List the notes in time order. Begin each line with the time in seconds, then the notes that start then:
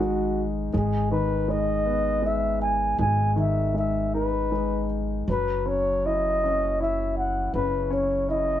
Already playing: G#1 D#3 D#4 F#4
0.00 G#3
0.73 G#1 G#3 G#4
1.11 D#3 B4
1.48 G#3 D#5
1.85 B3
2.22 G#3 E5
2.62 G#5
2.98 G#1 G#3 G#5
3.36 D#3
3.40 E5
3.74 G#3
3.78 E5
4.14 D#4 B4
4.51 G#3
5.27 F#1 F#3 B4
5.66 C#4 C#5
6.05 E4 D#5
6.44 C#4
6.80 E4 E5
7.18 F#5
7.54 F#1 C#3 B4
7.90 C#4 C#5
8.29 E4 D#5